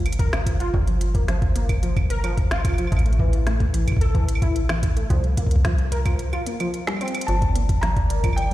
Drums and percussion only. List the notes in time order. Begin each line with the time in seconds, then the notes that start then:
0.06 closed hi-hat, claves
0.12 closed hi-hat
0.19 kick, closed hi-hat
0.33 snare, closed hi-hat, claves
0.46 kick, closed hi-hat
0.60 closed hi-hat
0.74 kick
0.87 closed hi-hat
1.01 closed hi-hat
1.15 kick, closed hi-hat
1.28 snare, closed hi-hat
1.42 kick, closed hi-hat
1.56 closed hi-hat
1.69 kick, closed hi-hat, claves
1.83 closed hi-hat
1.96 kick, closed hi-hat, claves
2.10 closed hi-hat
2.24 closed hi-hat, claves
2.37 kick, closed hi-hat
2.51 snare, closed hi-hat, claves
2.56 claves
2.60 claves
2.65 kick, closed hi-hat, claves
2.69 claves
2.74 claves
2.78 closed hi-hat, claves
2.87 claves
2.92 kick, closed hi-hat
2.97 closed hi-hat, claves
3.06 closed hi-hat
3.13 closed hi-hat
3.19 kick
3.33 closed hi-hat
3.47 snare, closed hi-hat
3.60 kick, closed hi-hat
3.74 closed hi-hat
3.87 kick, closed hi-hat, claves
3.92 kick
3.96 kick
4.01 closed hi-hat
4.15 kick, closed hi-hat
4.29 closed hi-hat
4.35 claves
4.42 kick, closed hi-hat
4.56 closed hi-hat
4.69 snare, closed hi-hat, claves
4.83 kick, closed hi-hat
4.97 closed hi-hat
5.10 kick, closed hi-hat
5.24 closed hi-hat
5.37 kick, closed hi-hat
5.46 kick
5.51 closed hi-hat
5.56 kick
5.65 kick, snare, closed hi-hat
5.78 closed hi-hat
5.92 closed hi-hat
6.06 kick, closed hi-hat, claves
6.19 closed hi-hat
6.33 closed hi-hat, claves
6.46 closed hi-hat
6.60 closed hi-hat, claves
6.74 closed hi-hat
6.87 snare, closed hi-hat, claves
6.96 claves
7.01 closed hi-hat, claves
7.05 closed hi-hat, claves
7.15 closed hi-hat, claves
7.21 closed hi-hat
7.28 closed hi-hat
7.42 kick, closed hi-hat
7.56 closed hi-hat
7.69 kick, closed hi-hat
7.83 snare, closed hi-hat
7.96 kick, closed hi-hat
8.10 closed hi-hat
8.24 kick, closed hi-hat, claves
8.33 claves
8.38 closed hi-hat
8.42 claves